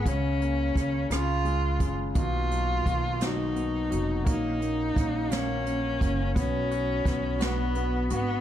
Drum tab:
HH |xxxxxx|xxxxxx|xxxxxx|xxxxxx|
SD |--rr--|---o--|---o--|--oo--|
BD |o-o--o|o-o---|o-o--o|o-o---|